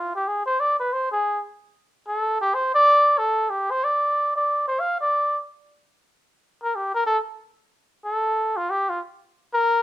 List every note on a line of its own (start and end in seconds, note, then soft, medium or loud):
0.00 0.14 F4 medium
0.15 0.29 G4 medium
0.28 0.45 G#4 medium
0.46 0.61 C5 medium
0.60 0.78 D5 medium
0.80 0.94 B4 medium
0.93 1.11 C5 medium
1.12 1.40 G#4 medium
2.08 2.37 A4 medium
2.41 2.56 G4 medium
2.54 2.73 C5 medium
2.74 3.20 D5 loud
3.18 3.51 A4 medium
3.50 3.72 G4 medium
3.71 3.85 C5 medium
3.84 4.34 D5 medium
4.36 4.64 D5 medium
4.68 4.81 C5 medium
4.80 4.99 F5 medium
5.00 5.40 D5 medium
6.63 6.77 A#4 medium
6.75 6.94 G4 medium
6.94 7.04 A#4 medium
7.06 7.18 A4 medium
8.05 8.58 A4 medium
8.57 8.72 F4 medium
8.70 8.91 G4 medium
8.89 9.00 F4 medium
9.54 9.82 A#4 loud